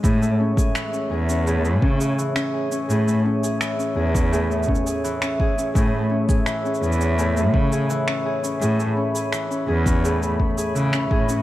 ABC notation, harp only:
X:1
M:4/4
L:1/16
Q:1/4=84
K:A
V:1 name="Harp"
[A,,G] A, C G E, C G C [A,,G] A, C G E, C G C | [A,,G] A, C G E, C G C [A,,G] A, C G E, C G C | [A,,G] A, C G E, C G C [A,,G] A, C G E, C G C | [A,,G] A, C G E, C G C [A,,G] A, C G E, C G C |]